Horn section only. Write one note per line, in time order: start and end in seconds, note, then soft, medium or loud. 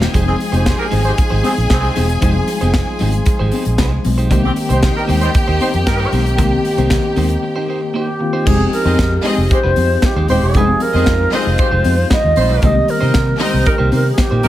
0.27 0.35 D#3 medium
0.27 0.35 C4 medium
0.27 0.35 G#4 medium
0.53 0.64 G#3 medium
0.53 0.64 G4 medium
0.53 0.64 C5 medium
0.66 0.76 G#3 medium
0.66 0.76 G4 medium
0.66 0.76 C5 medium
0.79 0.87 A#3 medium
0.79 0.87 G4 medium
0.79 0.87 A#4 medium
1.05 1.13 G#3 medium
1.05 1.13 G4 medium
1.05 1.13 C5 medium
1.44 1.52 D#3 medium
1.44 1.52 C4 medium
1.44 1.52 G#4 loud
1.70 1.91 D#3 loud
1.70 1.91 C4 loud
1.70 1.91 G#4 loud
4.43 4.51 D#3 medium
4.43 4.51 C4 medium
4.43 4.51 G4 medium
4.70 4.80 G3 medium
4.70 4.80 D#4 medium
4.70 4.80 C5 medium
4.83 4.93 G3 medium
4.83 4.93 D#4 medium
4.83 4.93 C5 medium
4.96 5.04 G3 medium
4.96 5.04 D#4 medium
4.96 5.04 A#4 medium
5.21 5.29 G3 medium
5.21 5.29 D#4 medium
5.21 5.29 C5 loud
5.61 5.68 G3 medium
5.61 5.68 D#4 medium
5.61 5.68 C5 loud
5.86 6.07 G3 medium
5.86 6.07 D#4 loud
5.86 6.07 A#4 loud
9.51 9.59 G#3 medium
9.51 9.59 G4 medium
9.51 9.59 C5 medium
10.29 10.62 G#3 loud
10.29 10.62 G4 loud
10.29 10.62 C5 loud
11.59 11.67 G#3 medium
11.59 11.67 G4 medium
11.59 11.67 C5 medium
12.37 12.70 G3 loud
12.37 12.70 D#4 medium
12.37 12.70 C5 loud
13.66 13.75 G3 medium
13.66 13.75 D#4 medium
13.66 13.75 A#4 loud
14.44 14.48 G3 loud
14.44 14.48 D#4 loud
14.44 14.48 A#4 medium